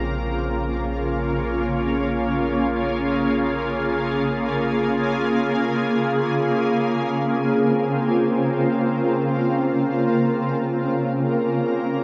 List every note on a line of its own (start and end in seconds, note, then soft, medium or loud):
0.00 6.40 A#1 medium
0.00 12.04 C#3 medium
0.00 12.04 A#3 medium
0.00 0.49 C4 medium
0.00 12.04 F4 medium
0.00 1.99 A#4 medium
0.26 6.45 C#4 medium
1.76 7.59 G#4 medium
6.79 12.04 C4 medium
7.57 12.04 A#4 medium